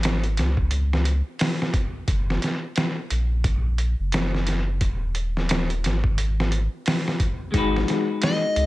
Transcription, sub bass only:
0.00 0.39 G#1 medium
0.38 1.22 C#2 loud
2.08 2.39 F#1 loud
3.11 3.95 A#1 medium
3.99 4.83 F#1 medium
4.81 5.86 D#1 loud
5.84 6.68 G#1 loud
7.54 7.85 G#1 medium
8.56 8.66 C#2 loud

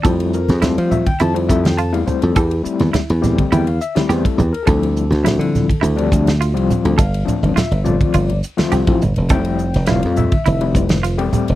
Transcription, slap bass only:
0.05 0.45 F2 medium
0.49 0.75 F2 medium
0.78 1.04 F3 medium
1.21 1.47 F2 medium
1.50 1.94 F2 medium
1.94 2.06 E2 medium
2.08 muted slap bass stroke soft
2.23 2.35 F2 medium
2.36 2.63 E2 medium
2.66 muted slap bass stroke soft
2.80 2.93 E2 medium
2.94 muted slap bass stroke soft
3.10 3.36 E2 medium
3.52 3.78 E2 medium
4.09 4.23 E2 medium
4.38 4.52 E2 medium
4.68 5.08 D2 medium
5.10 5.37 D2 medium
5.39 5.66 D3 loud
5.83 6.09 D2 loud
6.12 6.57 D2 medium
6.57 6.69 C2 medium
6.69 muted slap bass stroke soft
6.85 6.98 D2 medium
6.99 7.25 G1 medium
7.28 muted slap bass stroke soft
7.43 7.55 G1 medium
7.71 7.98 G1 medium
8.14 8.41 G1 medium
8.72 8.86 C2 medium
8.88 9.00 A1 medium
9.02 9.15 G1 medium
9.17 9.29 F1 medium
9.30 9.70 F1 medium
9.75 10.01 F1 medium
10.05 10.30 F2 loud
10.47 10.73 F1 loud
10.75 11.19 F1 medium
11.19 11.32 E1 medium
11.34 muted slap bass stroke soft
11.49 11.55 F1 medium

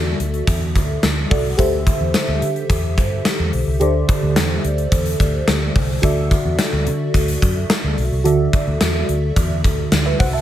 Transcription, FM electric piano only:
0.00 0.16 D3 medium
0.00 1.26 F#4 medium
0.00 1.27 A4 medium
0.00 1.27 D5 medium
0.00 1.28 E5 medium
1.30 1.58 F#4 medium
1.30 1.57 A4 medium
1.30 1.59 D5 medium
1.30 1.59 F#5 medium
1.57 2.38 D3 medium
1.57 3.76 G4 medium
1.57 3.77 A4 medium
1.57 3.77 C5 medium
1.57 3.77 E5 medium
3.80 4.60 D3 medium
3.80 5.99 G4 medium
3.80 5.99 A4 medium
3.80 5.99 C5 medium
3.80 6.00 D5 medium
6.02 6.83 D3 medium
6.02 8.21 F#4 medium
6.02 8.21 A4 medium
6.02 8.22 D5 medium
6.02 8.22 E5 medium
8.24 9.05 D3 medium
8.24 10.41 F#4 medium
8.24 10.41 A4 medium
8.24 9.62 D5 medium
8.24 9.62 E5 medium
10.06 10.19 B4 medium
10.06 10.19 E5 medium
10.19 10.33 C5 medium
10.19 10.33 F#5 medium
10.33 10.41 E5 medium
10.33 10.41 A5 medium

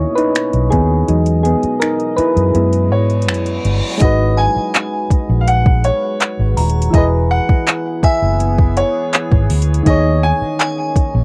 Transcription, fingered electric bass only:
0.54 0.69 B1 medium
0.72 1.02 D#2 medium
1.09 1.54 E2 loud
1.64 muted fingered electric bass stroke medium
2.18 muted fingered electric bass stroke soft
2.37 2.52 F#2 medium
2.55 2.92 F#2 loud
2.92 3.28 G#2 medium
3.28 3.58 F#2 medium
3.65 3.80 G1 loud
4.01 4.46 G#1 loud
4.56 muted fingered electric bass stroke medium
5.11 muted fingered electric bass stroke soft
5.29 5.89 A#1 loud
6.39 6.54 G#1 medium
6.57 6.87 D#1 medium
6.94 7.39 E1 loud
7.49 muted fingered electric bass stroke medium
8.03 muted fingered electric bass stroke medium
8.22 8.82 F#1 loud
9.32 9.47 G#1 medium
9.50 9.80 D2 loud
9.86 10.31 D#2 loud
10.42 muted fingered electric bass stroke soft
10.96 muted fingered electric bass stroke soft
11.15 11.24 A#1 medium

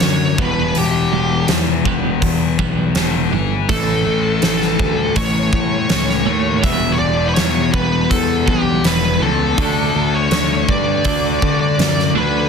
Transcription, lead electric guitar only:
0.00 0.40 C#5 medium
0.40 0.77 B4 medium
0.77 1.46 G4 medium
3.69 5.21 A4 medium
5.16 6.68 C#5 medium
6.63 6.94 E5 loud
6.92 6.99 C#5 medium
6.99 7.27 D5 medium
7.29 7.34 B4 medium
7.35 7.70 C#5 medium
7.73 8.11 B4 medium
8.10 8.45 A4 medium
8.49 8.86 G4 medium
8.86 9.23 B4 medium
9.22 10.16 A4 medium
10.15 10.70 C#5 medium
10.70 11.59 D5 medium
11.61 12.12 D5 medium
12.18 12.49 B4 medium

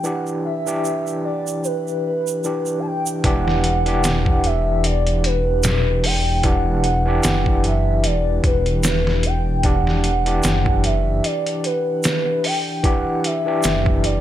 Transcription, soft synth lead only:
0.04 0.18 F#5 medium
0.44 1.20 E5 loud
1.24 1.66 D5 medium
1.65 2.04 B4 medium
2.07 2.81 B4 loud
2.79 2.88 A5 medium
2.86 3.18 G5 loud
3.19 3.28 G5 medium
3.27 4.48 F#5 loud
4.46 4.87 E5 loud
4.86 5.27 D5 loud
5.26 6.07 B4 loud
6.05 6.45 G5 loud
6.46 7.61 F#5 loud
7.66 8.07 E5 loud
8.05 8.44 D5 loud
8.45 9.27 B4 loud
9.26 9.58 G5 loud
9.59 9.67 G5 medium
9.65 10.86 F#5 loud
10.85 11.27 E5 medium
11.25 11.67 D5 loud
11.65 12.47 B4 loud
12.45 12.85 G5 loud
12.85 13.27 F#5 loud
13.26 14.07 E5 loud
14.05 14.21 D5 medium

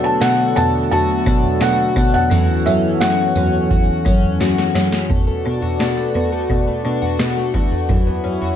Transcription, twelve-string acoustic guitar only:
0.00 2.31 A3 medium
0.00 0.56 D4 medium
0.00 0.22 F#4 medium
0.22 0.92 F#4 medium
0.57 1.26 D4 medium
0.92 1.62 F#4 medium
1.27 1.95 D4 medium
1.62 2.31 F#4 medium
1.97 2.39 D4 medium
2.31 5.10 E3 medium
2.31 3.01 F#4 medium
2.66 3.34 C#4 medium
3.01 3.71 F#4 medium
3.36 4.05 C#4 medium
3.71 4.41 F#4 medium
4.06 4.74 C#4 medium
4.41 5.62 F#4 medium
4.75 5.17 C#4 medium
5.10 5.26 A3 medium
5.27 5.96 A3 medium
5.45 5.78 D4 soft
5.62 6.14 F#4 medium
5.79 6.83 D4 soft
5.97 6.31 A3 soft
6.14 7.01 F#4 medium
6.32 6.49 A3 medium
6.50 6.66 A3 medium
6.67 7.36 A3 soft
6.85 7.18 D4 soft
7.02 7.54 F#4 medium
7.19 7.96 D4 soft
7.37 7.70 A3 medium
7.54 8.41 F#4 medium
7.72 7.96 A3 medium
7.89 8.56 E3 medium
8.07 8.56 B3 soft
8.24 8.56 C#4 soft
8.42 8.56 F#4 soft

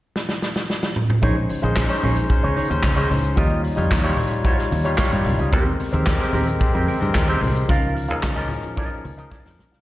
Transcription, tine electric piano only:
1.22 1.57 G#3 medium
1.22 1.58 C#4 medium
1.22 1.58 D#4 medium
1.22 1.58 C5 medium
1.62 1.86 G#3 medium
1.62 1.86 C#4 medium
1.62 1.86 D#4 medium
1.62 1.87 C5 medium
1.89 2.24 G#3 medium
1.89 2.25 C#4 medium
1.89 2.25 D#4 medium
1.89 2.25 C5 medium
2.29 2.65 G#3 medium
2.29 2.65 C#4 medium
2.29 2.65 D#4 medium
2.29 2.65 C5 medium
2.70 2.93 G#3 medium
2.70 2.94 C#4 medium
2.70 2.94 D#4 medium
2.70 2.94 C5 medium
2.96 3.32 G#3 medium
2.96 3.32 C#4 medium
2.96 3.32 D#4 medium
2.96 3.33 C5 medium
3.36 3.72 G3 medium
3.36 3.72 D#4 medium
3.36 3.73 F4 medium
3.36 3.73 C#5 medium
3.77 4.01 G3 medium
3.77 4.01 D#4 medium
3.77 4.01 F4 medium
3.77 4.01 C#5 medium
4.04 4.39 G3 medium
4.04 4.39 D#4 medium
4.04 4.40 F4 medium
4.04 4.40 C#5 medium
4.44 4.80 G3 medium
4.44 4.80 D#4 medium
4.44 4.80 F4 medium
4.44 4.80 C#5 medium
4.84 5.08 G3 medium
4.84 5.08 D#4 medium
4.84 5.09 F4 medium
4.84 5.09 C#5 medium
5.11 5.47 G3 medium
5.11 5.47 D#4 medium
5.11 5.48 F4 medium
5.11 5.48 C#5 medium
5.52 5.88 G#3 medium
5.52 5.88 C4 medium
5.52 5.88 G4 medium
5.52 5.88 A#4 medium
5.92 6.16 G#3 medium
5.92 6.16 C4 medium
5.92 6.17 G4 medium
5.92 6.17 A#4 medium
6.19 6.55 G#3 medium
6.19 6.55 C4 medium
6.19 6.56 G4 medium
6.19 6.56 A#4 medium
6.59 6.95 G#3 medium
6.59 6.96 C4 medium
6.59 6.96 G4 medium
6.59 6.96 C5 medium
7.01 7.25 G#3 medium
7.01 7.25 C4 medium
7.01 7.25 G4 medium
7.01 7.25 A#4 medium
7.28 7.63 G#3 medium
7.28 7.64 C4 medium
7.28 7.64 G4 medium
7.28 7.64 C5 medium
7.68 8.04 F3 medium
7.68 8.04 C#4 medium
7.68 8.05 D#4 medium
7.68 8.05 A#4 medium
8.09 8.33 F3 medium
8.09 8.33 C#4 medium
8.09 8.33 D#4 medium
8.09 8.34 G#4 medium
8.36 8.72 F3 medium
8.36 8.72 C#4 medium
8.36 8.72 D#4 medium
8.36 8.72 A#4 medium
8.77 9.12 F3 medium
8.77 9.13 C#4 medium
8.77 9.13 D#4 medium
8.77 9.13 A#4 medium
9.17 9.41 F3 medium
9.17 9.41 C#4 medium
9.17 9.42 D#4 medium
9.17 9.42 A#4 medium
9.32 9.57 D#5 medium
9.45 9.80 F3 medium
9.45 9.80 C#4 medium
9.45 9.81 D#4 medium
9.45 9.58 A#4 medium
9.59 9.81 A#4 medium

